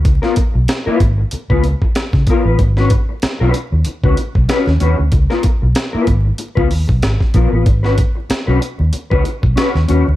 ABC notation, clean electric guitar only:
X:1
M:4/4
L:1/16
Q:"Swing 16ths" 1/4=95
K:G#dor
V:1 name="Clean electric guitar"
z [B,EA] z3 [B,EB] z3 [B,EB] z4 [B,EA] [B,EB] | z [CFB] z3 [CFB] z3 [CFB] z2 [CFB] z [CFB] z | z [B,EA] z3 [B,EB] z3 [B,EB] z4 [B,EA] [B,EB] | z [CFB] z3 [CFB] z3 [CFB] z2 [CFB] z [CFB] z |]